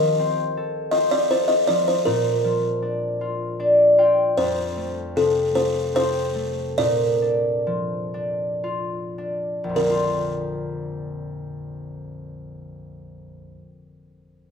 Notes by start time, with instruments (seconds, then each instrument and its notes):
Already playing: harp F3 A#3 G4, kalimba D#5
0.19 harp C4
0.57 harp A4
0.91 harp C4, kalimba D#5
1.11 kalimba D5
1.31 harp A4, kalimba C5
1.48 kalimba D#5
1.67 harp F3, kalimba D5
1.88 kalimba C5
2.05 harp A#2, kalimba A#4
2.44 harp F3
2.82 harp D4
3.21 harp F4
3.60 harp D4 D5
3.98 harp F4 G5
4.38 harp F2, kalimba C5
4.76 harp A3
5.16 harp C3, kalimba A4
5.55 harp A3, kalimba C5
5.94 harp C4, kalimba C5
6.35 harp A3
6.78 harp A#2, kalimba D5
7.22 harp D4
7.67 harp F3
8.14 harp D4
8.64 harp F4
9.18 harp D4
9.64 harp A#1
9.69 harp F2
9.74 harp D3, kalimba A#4
9.79 harp F3
9.85 harp A#3
9.90 harp F4